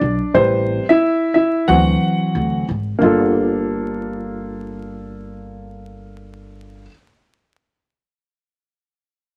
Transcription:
0, 0, Header, 1, 3, 480
1, 0, Start_track
1, 0, Tempo, 666667
1, 250, Time_signature, 4, 2, 24, 8
1, 6745, End_track
2, 0, Start_track
2, 0, Title_t, "Grand piano"
2, 0, Program_c, 0, 0
2, 0, Note_on_c, 0, 62, 64
2, 0, Note_on_c, 0, 74, 78
2, 224, Note_off_c, 0, 62, 0
2, 245, Note_on_c, 0, 48, 52
2, 248, Note_on_c, 0, 72, 86
2, 249, Note_on_c, 0, 55, 44
2, 254, Note_on_c, 0, 71, 52
2, 257, Note_on_c, 0, 60, 64
2, 262, Note_off_c, 0, 74, 0
2, 592, Note_off_c, 0, 48, 0
2, 595, Note_off_c, 0, 55, 0
2, 597, Note_off_c, 0, 71, 0
2, 615, Note_off_c, 0, 72, 0
2, 620, Note_off_c, 0, 60, 0
2, 642, Note_on_c, 0, 76, 89
2, 650, Note_on_c, 0, 64, 75
2, 950, Note_off_c, 0, 64, 0
2, 955, Note_off_c, 0, 76, 0
2, 966, Note_on_c, 0, 76, 79
2, 976, Note_on_c, 0, 64, 63
2, 1196, Note_off_c, 0, 64, 0
2, 1207, Note_on_c, 0, 52, 51
2, 1208, Note_on_c, 0, 78, 92
2, 1211, Note_on_c, 0, 54, 46
2, 1215, Note_off_c, 0, 76, 0
2, 1216, Note_on_c, 0, 60, 57
2, 1216, Note_on_c, 0, 66, 68
2, 1900, Note_off_c, 0, 52, 0
2, 1900, Note_off_c, 0, 78, 0
2, 1902, Note_off_c, 0, 54, 0
2, 1904, Note_off_c, 0, 60, 0
2, 1904, Note_off_c, 0, 66, 0
2, 2150, Note_on_c, 0, 58, 66
2, 2163, Note_on_c, 0, 62, 63
2, 2180, Note_on_c, 0, 65, 64
2, 2193, Note_on_c, 0, 69, 69
2, 4912, Note_off_c, 0, 58, 0
2, 4925, Note_off_c, 0, 62, 0
2, 4942, Note_off_c, 0, 65, 0
2, 4955, Note_off_c, 0, 69, 0
2, 6745, End_track
3, 0, Start_track
3, 0, Title_t, "Upright bass"
3, 0, Program_c, 1, 32
3, 9, Note_on_c, 1, 35, 76
3, 130, Note_off_c, 1, 35, 0
3, 249, Note_on_c, 1, 33, 91
3, 558, Note_off_c, 1, 33, 0
3, 1211, Note_on_c, 1, 38, 90
3, 1398, Note_off_c, 1, 38, 0
3, 1692, Note_on_c, 1, 38, 76
3, 1879, Note_off_c, 1, 38, 0
3, 1933, Note_on_c, 1, 32, 75
3, 2120, Note_off_c, 1, 32, 0
3, 2171, Note_on_c, 1, 31, 84
3, 4934, Note_off_c, 1, 31, 0
3, 6745, End_track
0, 0, End_of_file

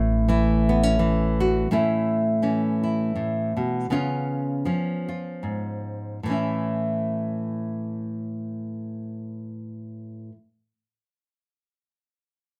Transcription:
0, 0, Header, 1, 3, 480
1, 0, Start_track
1, 0, Key_signature, 3, "major"
1, 0, Tempo, 715137
1, 1146, Time_signature, 3, 2, 24, 8
1, 2113, Tempo, 758534
1, 3553, Tempo, 823045
1, 7738, End_track
2, 0, Start_track
2, 0, Title_t, "Nylon-string guitar"
2, 0, Program_c, 0, 24
2, 0, Note_on_c, 0, 45, 85
2, 0, Note_on_c, 0, 52, 65
2, 0, Note_on_c, 0, 57, 73
2, 0, Note_on_c, 0, 64, 66
2, 188, Note_off_c, 0, 52, 0
2, 189, Note_off_c, 0, 64, 0
2, 191, Note_on_c, 0, 52, 70
2, 197, Note_on_c, 0, 64, 62
2, 464, Note_on_c, 0, 59, 64
2, 559, Note_off_c, 0, 59, 0
2, 559, Note_on_c, 0, 61, 53
2, 658, Note_off_c, 0, 52, 0
2, 666, Note_on_c, 0, 52, 64
2, 938, Note_off_c, 0, 64, 0
2, 942, Note_on_c, 0, 66, 61
2, 1119, Note_off_c, 0, 52, 0
2, 1122, Note_off_c, 0, 57, 0
2, 1125, Note_off_c, 0, 66, 0
2, 1140, Note_off_c, 0, 45, 0
2, 1144, Note_off_c, 0, 61, 0
2, 1147, Note_on_c, 0, 45, 65
2, 1150, Note_on_c, 0, 57, 51
2, 1154, Note_on_c, 0, 61, 52
2, 1161, Note_on_c, 0, 64, 60
2, 1627, Note_off_c, 0, 61, 0
2, 1627, Note_on_c, 0, 52, 50
2, 1630, Note_on_c, 0, 61, 43
2, 1894, Note_off_c, 0, 64, 0
2, 1902, Note_on_c, 0, 64, 44
2, 2110, Note_off_c, 0, 45, 0
2, 2117, Note_on_c, 0, 45, 45
2, 2374, Note_off_c, 0, 45, 0
2, 2377, Note_on_c, 0, 47, 51
2, 2554, Note_off_c, 0, 52, 0
2, 2556, Note_off_c, 0, 57, 0
2, 2582, Note_off_c, 0, 47, 0
2, 2582, Note_off_c, 0, 64, 0
2, 2589, Note_on_c, 0, 49, 58
2, 2594, Note_on_c, 0, 59, 51
2, 2597, Note_off_c, 0, 61, 0
2, 2599, Note_on_c, 0, 61, 47
2, 2604, Note_on_c, 0, 65, 56
2, 3064, Note_off_c, 0, 49, 0
2, 3064, Note_off_c, 0, 61, 0
2, 3066, Note_on_c, 0, 53, 48
2, 3072, Note_on_c, 0, 61, 43
2, 3331, Note_off_c, 0, 65, 0
2, 3339, Note_on_c, 0, 65, 38
2, 3556, Note_on_c, 0, 44, 36
2, 4000, Note_off_c, 0, 44, 0
2, 4001, Note_off_c, 0, 53, 0
2, 4001, Note_off_c, 0, 65, 0
2, 4004, Note_off_c, 0, 59, 0
2, 4004, Note_off_c, 0, 61, 0
2, 4025, Note_on_c, 0, 45, 46
2, 4039, Note_on_c, 0, 52, 41
2, 4048, Note_on_c, 0, 57, 37
2, 4062, Note_on_c, 0, 61, 39
2, 4073, Note_on_c, 0, 64, 38
2, 6393, Note_off_c, 0, 45, 0
2, 6406, Note_off_c, 0, 52, 0
2, 6416, Note_off_c, 0, 57, 0
2, 6429, Note_off_c, 0, 61, 0
2, 6440, Note_off_c, 0, 64, 0
2, 7738, End_track
3, 0, Start_track
3, 0, Title_t, "Analog synth bass"
3, 0, Program_c, 1, 38
3, 0, Note_on_c, 1, 33, 87
3, 1119, Note_off_c, 1, 33, 0
3, 7738, End_track
0, 0, End_of_file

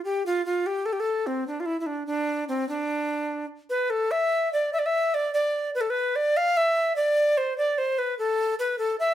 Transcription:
0, 0, Header, 1, 2, 480
1, 0, Start_track
1, 0, Tempo, 405405
1, 285, Time_signature, 6, 3, 24, 8
1, 10822, End_track
2, 0, Start_track
2, 0, Title_t, "Recorder"
2, 0, Program_c, 0, 74
2, 52, Note_on_c, 0, 67, 96
2, 272, Note_off_c, 0, 67, 0
2, 308, Note_on_c, 0, 65, 107
2, 521, Note_off_c, 0, 65, 0
2, 541, Note_on_c, 0, 65, 92
2, 785, Note_on_c, 0, 67, 99
2, 803, Note_off_c, 0, 65, 0
2, 1013, Note_on_c, 0, 69, 96
2, 1030, Note_off_c, 0, 67, 0
2, 1097, Note_on_c, 0, 67, 81
2, 1115, Note_off_c, 0, 69, 0
2, 1183, Note_on_c, 0, 69, 102
2, 1201, Note_off_c, 0, 67, 0
2, 1499, Note_on_c, 0, 60, 90
2, 1517, Note_off_c, 0, 69, 0
2, 1734, Note_off_c, 0, 60, 0
2, 1743, Note_on_c, 0, 62, 101
2, 1895, Note_on_c, 0, 65, 70
2, 1913, Note_off_c, 0, 62, 0
2, 1961, Note_on_c, 0, 64, 92
2, 1979, Note_off_c, 0, 65, 0
2, 2127, Note_off_c, 0, 64, 0
2, 2134, Note_on_c, 0, 64, 66
2, 2205, Note_on_c, 0, 62, 96
2, 2223, Note_off_c, 0, 64, 0
2, 2437, Note_off_c, 0, 62, 0
2, 2444, Note_on_c, 0, 62, 94
2, 2894, Note_off_c, 0, 62, 0
2, 2942, Note_on_c, 0, 60, 87
2, 3160, Note_off_c, 0, 60, 0
2, 3181, Note_on_c, 0, 62, 95
2, 4090, Note_off_c, 0, 62, 0
2, 4377, Note_on_c, 0, 71, 88
2, 4617, Note_on_c, 0, 69, 105
2, 4635, Note_off_c, 0, 71, 0
2, 4867, Note_on_c, 0, 76, 108
2, 4885, Note_off_c, 0, 69, 0
2, 5340, Note_off_c, 0, 76, 0
2, 5363, Note_on_c, 0, 74, 101
2, 5573, Note_off_c, 0, 74, 0
2, 5601, Note_on_c, 0, 76, 103
2, 5669, Note_on_c, 0, 74, 88
2, 5687, Note_off_c, 0, 76, 0
2, 5752, Note_on_c, 0, 76, 108
2, 5770, Note_off_c, 0, 74, 0
2, 6088, Note_on_c, 0, 74, 112
2, 6106, Note_off_c, 0, 76, 0
2, 6310, Note_off_c, 0, 74, 0
2, 6318, Note_on_c, 0, 74, 101
2, 6752, Note_off_c, 0, 74, 0
2, 6806, Note_on_c, 0, 71, 103
2, 6876, Note_on_c, 0, 69, 84
2, 6893, Note_off_c, 0, 71, 0
2, 6985, Note_on_c, 0, 71, 99
2, 7003, Note_off_c, 0, 69, 0
2, 7289, Note_on_c, 0, 74, 109
2, 7307, Note_off_c, 0, 71, 0
2, 7539, Note_on_c, 0, 77, 123
2, 7557, Note_off_c, 0, 74, 0
2, 7778, Note_on_c, 0, 76, 111
2, 7796, Note_off_c, 0, 77, 0
2, 8235, Note_off_c, 0, 76, 0
2, 8240, Note_on_c, 0, 74, 104
2, 8731, Note_on_c, 0, 72, 96
2, 8748, Note_off_c, 0, 74, 0
2, 8951, Note_off_c, 0, 72, 0
2, 8970, Note_on_c, 0, 74, 114
2, 9212, Note_on_c, 0, 72, 101
2, 9230, Note_off_c, 0, 74, 0
2, 9453, Note_on_c, 0, 71, 93
2, 9471, Note_off_c, 0, 72, 0
2, 9671, Note_off_c, 0, 71, 0
2, 9694, Note_on_c, 0, 69, 98
2, 10119, Note_off_c, 0, 69, 0
2, 10172, Note_on_c, 0, 71, 91
2, 10375, Note_off_c, 0, 71, 0
2, 10400, Note_on_c, 0, 69, 103
2, 10608, Note_off_c, 0, 69, 0
2, 10651, Note_on_c, 0, 76, 108
2, 10822, Note_off_c, 0, 76, 0
2, 10822, End_track
0, 0, End_of_file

